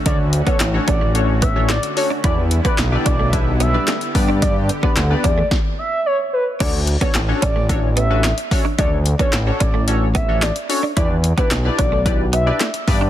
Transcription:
<<
  \new Staff \with { instrumentName = "Analog synth lead" } { \time 4/4 \key d \major \tempo 4 = 110 d''16 r8 cis''16 r8 d''8 r8 e''8 d''16 r16 cis''16 r16 | d''16 r8 b'16 r8 d''8 r8 e''8. r8. | d''16 r8 b'16 r8 d''8 r8 e''8 cis''16 r16 b'16 r16 | d''16 r8 cis''16 r8 d''8 r8 e''8. r8. |
d''16 r8 cis''16 r8 d''8 r8 e''8 d''16 r16 cis''16 r16 | d''16 r8 b'16 r8 d''8 r8 e''8. r8. | }
  \new Staff \with { instrumentName = "Analog polysynth" } { \time 4/4 \key d \major <cis' d' fis' a' cis''>16 r8 <cis' d' fis' a' cis''>16 r16 <cis' d' fis' a' cis''>16 r8 <cis' d' fis' a' cis''>16 r8 <cis' d' fis' a' cis''>16 r8 <cis' d' fis' a' cis''>16 r16 | <d' e' g' b' d''>16 r8 <d' e' g' b' d''>16 r16 <d' e' g' b' d''>16 r8 <d' e' g' b' e''>16 r8 <d' e' g' b' d''>16 r8 <b d' g' b' d''>8~ | <b d' g' b' d''>8 r16 <b d' g' b' d''>16 r16 <b d' g' b' d''>16 r2 r8 | <cis' d' fis' a' cis''>16 r8 <cis' d' fis' a' cis''>16 r16 <cis' d' fis' a' cis''>16 r8 <cis' d' fis' a' cis''>16 r8 <cis' d' fis' a' b'>16 r8 <cis' d' fis' a' cis''>16 r16 |
<cis' d' fis' a' cis''>16 r8 <cis' d' fis' a' cis''>16 r16 <cis' d' fis' a' cis''>16 r8 <cis' d' fis' a' cis''>16 r8 <cis' d' fis' a' cis''>16 r8 <cis' d' fis' a' cis''>16 r16 | <d' e' g' b' d''>16 r8 <d' e' g' b' d''>16 r16 <d' e' g' b' d''>16 r8 <d' e' g' b' d''>16 r8 <d' e' g' b' d''>16 r8 <b d' g' b' d''>8 | }
  \new Staff \with { instrumentName = "Clean electric guitar" } { \time 4/4 \key d \major d'16 r8 b16 r8 cis'16 a16 r8 b16 r16 a16 r8 d'16 | e'16 r8 b16 r8 d'16 a16 r8 b16 r16 a16 r8 d'16 | d'16 r8 b16 r8 d'16 a16 r2 | d'16 r8 b16 r8 cis'16 a16 r8 b16 r16 a16 r8 d'16 |
d'16 r8 b16 r8 cis'16 a16 r8 b16 r16 a16 r8 d'16 | e'16 r8 b16 r8 d'16 a16 r8 b16 r16 a16 r8 d'16 | }
  \new Staff \with { instrumentName = "Supersaw synth" } { \time 4/4 \key d \major << { <d fis'>1 | <d e'>2.~ <d e'>8 <d g'>8~ | <d g'>2 r2 | r1 |
r1 | r1 | } \\ { <a cis'>1 | <g b>1~ | <g b>2 r2 | r1 |
r1 | r1 | } >> }
  \new Staff \with { instrumentName = "Analog synth bass" } { \clef bass \time 4/4 \key d \major d,4 a,,8 a,,2~ a,,8 | e,4 b,,8 b,,2 g,8~ | g,4 d,8 e,8 r2 | d,4 a,,8 a,,2~ a,,8 |
d,4 a,,8 a,,2~ a,,8 | e,4 b,,8 b,,2 g,8 | }
  \new DrumStaff \with { instrumentName = "Drums" } \drummode { \time 4/4 <hh bd>8 hh16 <hh bd>16 <hc hh sn>8 <hh bd>8 hh8 <hh bd>8 <hc hh sn>16 hh16 hho8 | <hh bd>8 hh16 <hh bd>16 <hc hh sn>8 <hh bd>8 <hh bd>8 hh8 <hc hh sn>16 hh16 <hho bd>8 | <hh bd>8 hh16 bd16 <hc hh sn>8 <hh bd>8 <bd sn>4 r4 | <cymc hh bd>8 hh16 <hh bd>16 <hc hh sn>8 <hh bd>8 <hh bd>8 hh8 <hc hh sn>16 hh16 <hho bd>8 |
<hh bd>8 hh16 <hh bd>16 <hc hh sn>8 <hh bd>8 hh8 <hh bd>8 <hc hh sn>16 hh16 hho8 | <hh bd>8 hh16 <hh bd>16 <hc hh sn>8 <hh bd>8 <hh bd>8 hh8 <hc hh sn>16 hh16 <hho bd>8 | }
>>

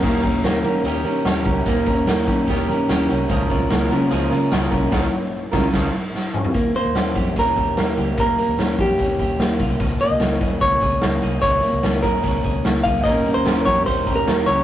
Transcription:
<<
  \new Staff \with { instrumentName = "Clean electric guitar" } { \time 4/4 \key ees \mixolydian \tempo 4 = 147 r1 | r1 | r1 | r1 |
r8 c''4. bes'2 | bes'4. g'2 r8 | r8 ees''4. des''2 | des''4. bes'2 f''8 |
ees''8. c''8. des''8 c''8. bes'8. des''8 | }
  \new Staff \with { instrumentName = "Clean electric guitar" } { \time 4/4 \key ees \mixolydian bes8 des'8 bes8 des'8 g'8 des'8 g'8 des'8 | bes8 des'8 bes8 des'8 g'8 des'8 g'8 des'8 | f8 des'8 bes8 des'8 aes'8 des'8 aes'8 des'8 | r1 |
bes8 bes8 des'8 g'8 des'8 g'8 bes8 g'8 | bes8 bes8 des'8 g'8 des'8 g'8 bes8 f'16 g'16 | f8 bes8 des'8 aes'8 des'8 aes'8 bes8 aes'8 | f8 bes8 des'8 aes'8 des'8 aes'8 bes8 aes'8 |
bes8 bes8 des'8 g'8 des'8 g'8 bes8 g'8 | }
  \new Staff \with { instrumentName = "Steel-string acoustic guitar" } { \time 4/4 \key ees \mixolydian <ees bes des' g' bes'>8 <des' g' bes'>8 <bes des' g' bes'>8 <des' g' bes'>8 <ees bes des' g' bes'>8 <des' g' bes'>8 <bes des' g' bes'>8 <des' g' bes'>8 | <ees bes des' g' bes'>8 <des' g' bes'>8 <bes des' g' bes'>8 <des' g' bes'>8 <ees bes des' g' bes'>8 <des' g' bes'>8 <bes des' g' bes'>8 <des' g' bes'>8 | <des f aes des' f' bes'>8 <aes des' f' bes'>8 <aes des' f' bes'>8 <aes des' f' bes'>8 <des f aes des' f' bes'>8 <aes des' f' bes'>8 <aes des' f' bes'>8 <aes des' f' bes'>8 | <des f aes des' f' bes'>8 r4 <aes des' f' bes'>8 <des f aes des' f' bes'>8 r4. |
r1 | r1 | r1 | r1 |
<ees bes des' g' bes'>8 <des' g' bes'>8 <ees bes des' g' bes'>8 <des' g' bes'>8 <bes des' g' bes'>8 <des' g' bes'>8 <ees bes des' g' bes'>8 <des' g' bes'>8 | }
  \new Staff \with { instrumentName = "Fingered electric bass" } { \clef bass \time 4/4 \key ees \mixolydian ees,8 ees,8 ees,8 ees8 ees,8 ees8 ees,8 des,8 | ees,8 ees,8 ees,8 ees8 ees,8 ees8 ees,8 c,8 | des,8 des,8 des,8 des8 des,8 des8 des,8 c,8 | des,8 r4 des,8 des,8 r4. |
ees,8 r16 ees,16 ees,8 f,8 ees,8 ees,8 ees,8 des,8 | ees,8 r16 ees,16 ees,8 f,8 ees,8 ees,8 ees,8 c,8 | des,8 r16 des,16 des,8 ees,8 des,8 des,8 des,8 c,8 | des,8 r16 des,16 des,8 ees,8 des,8 des,8 des,8 des,8 |
ees,8 r16 ees,16 ees,8 f,8 ees,8 ees,8 ees,8 des,8 | }
  \new DrumStaff \with { instrumentName = "Drums" } \drummode { \time 4/4 <cymc bd>8 <hh bd>8 <hh sn>8 hh8 hh8 hh8 <hh sn>8 <hh bd>8 | <hh bd>8 <hh bd>8 <hh sn>8 <hh bd>8 <hh bd sn>8 hh8 <hh sn>8 hh8 | <hh bd>8 <hh bd>8 <hh sn>8 hh8 <hh sn>8 hh8 <hh sn>8 <hh bd>8 | <cymc bd sn>4 r8 <bd sn>8 <cymc bd sn>4 sn8 toml16 tomfh16 |
<hh bd>8 hh8 <hh sn>8 <hh bd>8 <hh bd sn>8 <hh bd>8 <hh sn>8 hh8 | <hh bd>8 hh8 <hh sn>8 <hh bd>8 <hh bd>8 <hh bd>8 <hh sn>8 <hh bd>8 | <hh bd>8 hh8 <hh sn>8 <hh bd>8 <hh bd>8 <hh bd>8 <hh sn>8 hh8 | <hh bd>8 hh8 <hh sn>8 <hh bd>8 <hh bd sn>8 <hh bd>8 <hh sn>8 <hho bd>8 |
<hh bd>8 hh8 <hh sn>8 <hh bd>8 <hh bd>8 <hh bd>8 <hh sn>8 hh8 | }
>>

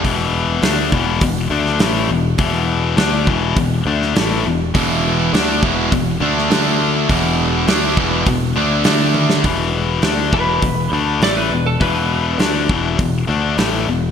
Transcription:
<<
  \new Staff \with { instrumentName = "Lead electric guitar" } { \time 4/4 \key d \mixolydian \tempo 4 = 102 r1 | r1 | r1 | r1 |
r4. b'4. d''16 b'8 a'16 | b'4 r2. | }
  \new Staff \with { instrumentName = "Distorted electric guitar" } { \clef bass \time 4/4 \key d \mixolydian <e, b, e>4 <d a d'>8 <e, b, e>8 <e, b,>8 <d a d'>8 <a, e a>8 <e, b,>8 | <e, b, e>4 <d a d'>8 <e, b, e>8 <e, b,>8 <d a d'>8 <a, e a>8 <e, b,>8 | <e, b, e>4 <d a d'>8 <e, b, e>8 <e, b,>8 <d a d'>8 <d a d'>4 | <e, b, e>4 <d a d'>8 <e, b, e>8 <e, b,>8 <d a d'>8 <d a d'>4 |
<e, b, e>4 <d a d'>8 <e, b, e>8 <e, b,>8 <d a d'>8 <a, e a>8 <e, b,>8 | <e, b, e>4 <d a d'>8 <e, b, e>8 <e, b,>8 <d a d'>8 <a, e a>8 <e, b,>8 | }
  \new Staff \with { instrumentName = "Overdriven electric guitar" } { \clef bass \time 4/4 \key d \mixolydian r1 | r1 | <e, b, e>4 <d a d'>8 <e, b, e>8 <e, b,>8 <d a d'>8 <d a d'>4 | <e, b, e>4 <d a d'>8 <e, b, e>8 <e, b,>8 <d a d'>8 <d a d'>4 |
r1 | r1 | }
  \new Staff \with { instrumentName = "Picked electric bass" } { \clef bass \time 4/4 \key d \mixolydian e,,4 d,8 e,,8 e,,8 d,8 a,,8 e,,8 | e,,4 d,8 e,,8 e,,8 d,8 a,,8 e,,8 | e,,4 d,8 e,,8 e,,8 d,8 d,4 | e,,4 d,8 e,,8 e,,8 d,8 d,4 |
e,,4 d,8 e,,8 e,,8 d,8 a,,8 e,,8 | e,,4 d,8 e,,8 e,,8 d,8 a,,8 e,,8 | }
  \new DrumStaff \with { instrumentName = "Drums" } \drummode { \time 4/4 <hho bd>4 <hho sn>8 bd8 <hho bd>8. sn16 <hho sn>4 | <hho bd>4 <hho sn>8 bd8 <hho bd>8. sn16 <hho sn>4 | <hho bd>4 <hho sn>8 bd8 <hho bd>8. sn16 <hho sn>4 | <hho bd>4 <hho sn>8 bd8 <hho bd>4 <hho sn>8 tommh16 sn16 |
<hho bd>4 <hho sn>8 bd8 <hho bd>4 <hho sn>4 | <hho bd>4 <hho sn>8 bd8 <hho bd>4 <hho sn>4 | }
>>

